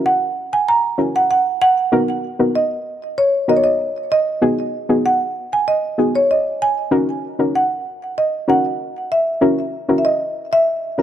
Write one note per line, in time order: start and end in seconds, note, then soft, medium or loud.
0.06 0.54 F#5 loud
0.53 0.66 G#5 loud
0.69 1.12 A#5 loud
0.98 1.17 C#4 medium
0.98 1.17 E4 medium
0.98 1.17 F#4 medium
0.98 1.17 A#4 medium
1.16 1.29 F#5 loud
1.31 1.59 F#5 loud
1.62 2.58 F#5 loud
1.92 2.11 B3 loud
1.92 2.11 D#4 medium
1.92 2.11 F#4 medium
1.92 2.11 A#4 loud
2.39 2.57 B3 medium
2.39 2.57 D#4 medium
2.39 2.58 F#4 medium
2.39 2.58 A#4 medium
2.55 3.19 D#5 medium
3.18 3.46 C#5 loud
3.48 3.67 B3 medium
3.48 3.67 D#4 medium
3.48 3.67 F#4 medium
3.48 3.67 A#4 medium
3.48 3.56 D#5 loud
3.57 3.63 C#5 medium
3.64 4.08 D#5 medium
4.12 5.08 D#5 loud
4.42 4.61 B3 loud
4.42 4.61 D#4 medium
4.42 4.61 F#4 medium
4.42 4.61 G#4 loud
4.89 5.07 B3 medium
4.89 5.07 D#4 medium
4.89 5.07 F#4 medium
4.89 5.07 G#4 medium
5.06 5.54 F#5 loud
5.53 5.66 G#5 loud
5.68 6.16 D#5 loud
5.98 6.17 B3 medium
5.98 6.17 D#4 medium
5.98 6.17 F#4 medium
5.98 6.17 G#4 medium
6.15 6.30 C#5 medium
6.31 6.62 D#5 medium
6.62 7.58 G#5 loud
6.91 7.11 C#4 loud
6.91 7.11 D#4 medium
6.91 7.11 F#4 medium
6.91 7.11 A#4 loud
7.39 7.57 C#4 medium
7.39 7.57 D#4 medium
7.39 7.57 F#4 medium
7.39 7.57 A#4 medium
7.55 8.19 F#5 medium
8.18 8.50 D#5 medium
8.48 8.67 C#4 medium
8.48 8.67 D#4 medium
8.48 8.67 F#4 medium
8.48 8.67 A#4 medium
8.48 9.13 F#5 loud
9.12 9.70 E5 medium
9.41 9.61 C#4 loud
9.41 9.61 E4 medium
9.41 9.61 F#4 medium
9.41 9.61 A#4 loud
9.89 10.07 C#4 medium
9.89 10.07 E4 medium
9.89 10.07 F#4 medium
9.89 10.07 A#4 medium
9.98 10.05 E5 medium
10.05 10.53 D#5 loud
10.53 11.02 E5 loud
10.98 11.02 C#4 medium
10.98 11.02 E4 medium
10.98 11.02 F#4 medium
10.98 11.02 A#4 medium